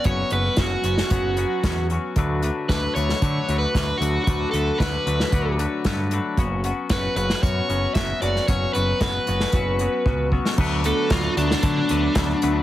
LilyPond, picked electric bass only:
\new Staff \with { instrumentName = "Picked electric bass" } { \clef bass \time 4/4 \key d \major \tempo 4 = 114 fis,,8 fis,,8 fis,,8 fis,,8 fis,,4 e,4 | d,4 d,8 d,8 d8 d,8 d,8 d,8 | d,8 d,8 d,8 d,8 d,4 g,4 | fis,,4 fis,,8 fis,,8 fis,8 fis,,8 fis,,8 fis,,8 |
fis,,8 fis,,8 fis,,8 fis,,8 fis,,4 cis,4 | d,4 d,8 d,8 d8 d,8 d,8 d,8 | }